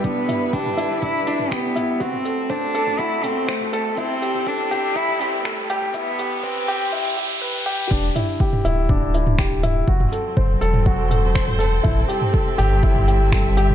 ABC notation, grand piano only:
X:1
M:4/4
L:1/8
Q:1/4=122
K:Em
V:1 name="Grand piano"
D E G E D E G E | F A c A F A c A | E G A G E G A G | E G B G E G B G |
D E G E D E G E | F A c A F A c A | E G A G E G z G |]